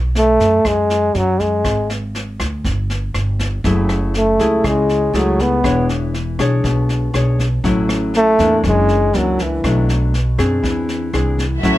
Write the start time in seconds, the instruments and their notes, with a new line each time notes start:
Already playing: upright bass B1
0.15 trombone A3, snare
0.40 upright bass F#2, kick, snare
0.65 upright bass F#2, trombone G#3, kick, cross-stick, snare
0.90 snare
1.15 upright bass F#2, trombone F#3, snare
1.40 trombone G#3, kick, snare
1.65 upright bass G#1, kick, cross-stick, snare
1.90 snare
2.15 snare
2.40 upright bass D2, kick, cross-stick, snare
2.65 upright bass G1, kick, snare
2.90 snare
3.15 upright bass G1, cross-stick, snare
3.39 kick, snare
3.64 upright bass F#1, nylon-string guitar F#3 A3 E4 G#4, kick, snare
3.89 cross-stick, snare
4.14 trombone A3, snare
4.39 upright bass C#2, nylon-string guitar E4 G#4, kick, snare
4.64 upright bass C#2, nylon-string guitar C#3, trombone G#3, kick, cross-stick, snare
4.89 snare
5.13 upright bass C#2, trombone F#3, nylon-string guitar A3 E4 G#4, snare
5.39 trombone B3, kick, snare
5.64 upright bass E1, nylon-string guitar E3 D4 G#4 C#5, kick, cross-stick, snare
5.89 snare
6.14 snare
6.39 upright bass B1, nylon-string guitar D4 G#4 C#5, kick, cross-stick, snare
6.64 upright bass B1, nylon-string guitar B2, kick, snare
6.89 snare
7.14 upright bass B1, nylon-string guitar D4 G#4 C#5, cross-stick, snare
7.39 kick, snare
7.64 upright bass A1, nylon-string guitar A2 F#3 C#4 E4, kick, snare
7.89 cross-stick, snare
8.14 trombone A3, snare
8.39 upright bass E2, nylon-string guitar E3 A#3 D4, kick, snare
8.64 upright bass F#1, nylon-string guitar F#2, kick, cross-stick, snare
8.68 trombone G#3
8.89 snare
9.13 upright bass C#2, nylon-string guitar E3 A#3 D4, snare
9.18 trombone F#3
9.39 trombone E3, kick, snare
9.64 upright bass B1, nylon-string guitar B2 F#3 A3 D4, kick, cross-stick, snare
9.89 snare
10.14 snare
10.38 upright bass F#2, nylon-string guitar C4 D4 G#4, kick, cross-stick, snare
10.63 upright bass E2, nylon-string guitar E3, kick, snare
10.89 snare
11.13 upright bass C2, nylon-string guitar C4 D4 G#4, cross-stick, snare
11.38 kick, snare
11.62 upright bass A1, nylon-string guitar A2 F#3 C#4 E4, string section C#4 F#4 A4 E5, kick, snare